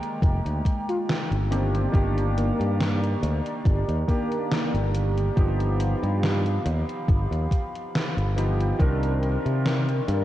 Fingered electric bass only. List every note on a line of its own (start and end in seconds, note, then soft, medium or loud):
0.22 0.39 F1 medium
0.45 0.60 D2 medium
1.31 1.86 G1 medium
1.94 2.50 G1 medium
2.60 3.14 G2 medium
3.23 3.40 D2 medium
3.65 3.82 G1 medium
3.88 4.03 D#2 medium
4.74 5.29 G1 medium
5.37 5.93 G1 medium
6.03 6.57 G2 medium
6.66 6.83 D#2 medium
7.08 7.25 G1 loud
7.31 7.46 D#2 medium
8.17 8.71 G1 medium
8.79 9.36 C2 medium
9.45 10.00 C3 medium
10.08 10.24 G2 medium